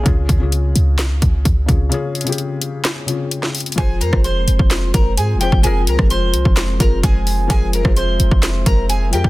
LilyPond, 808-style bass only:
\new Staff \with { instrumentName = "808-style bass" } { \clef bass \time 4/4 \key f \minor \tempo 4 = 129 des,8 des,4 des,8 c,16 des,16 des,8 des,8 des,8 | r1 | f,,8 f,16 f,,8. f,,16 f,,8. f,,8 aes,16. f,,16. f,,16 | f,,8 c,16 f,,8. c,16 f,,8. f,,8 f,,4 |
f,,8. f,,8. f,,16 f,,8. f,,4 f,16 f,,16 | }